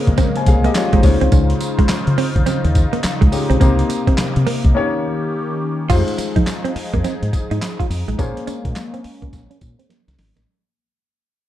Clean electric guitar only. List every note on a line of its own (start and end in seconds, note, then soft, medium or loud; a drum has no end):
0.18 0.29 C4 loud
0.36 muted clean electric guitar stroke soft
0.64 0.71 A#3 medium
0.93 1.00 G#3 medium
1.03 muted clean electric guitar stroke soft
1.21 1.28 C4 medium
1.32 1.43 C#4 medium
1.61 muted clean electric guitar stroke soft
1.79 1.85 G#3 medium
2.18 2.29 C4 medium
2.46 2.57 C4 medium
2.65 muted clean electric guitar stroke soft
2.93 3.00 A#3 medium
3.21 3.28 G#3 medium
3.32 muted clean electric guitar stroke soft
3.50 3.56 C4 medium
3.61 3.72 C4 loud
3.89 muted clean electric guitar stroke soft
4.07 4.14 C4 medium
4.47 4.58 A#3 medium
5.90 6.01 F4 loud
6.18 muted clean electric guitar stroke soft
6.36 6.43 D#4 medium
6.64 6.71 C4 medium
6.76 muted clean electric guitar stroke soft
6.94 7.00 A#3 medium
7.04 7.15 C4 medium
7.33 muted clean electric guitar stroke soft
7.51 7.58 D#4 medium
7.79 7.86 F4 medium
7.90 muted clean electric guitar stroke soft
8.08 8.15 G#3 medium
8.19 8.30 A#3 medium
8.37 muted clean electric guitar stroke soft
8.47 8.58 C#4 medium
8.94 9.00 C4 medium
9.05 muted clean electric guitar stroke soft
9.22 9.29 A#3 medium
9.50 9.57 C#4 medium
9.79 9.86 C4 medium
9.89 10.00 A#3 medium
10.18 muted clean electric guitar stroke soft
10.36 10.43 A#3 medium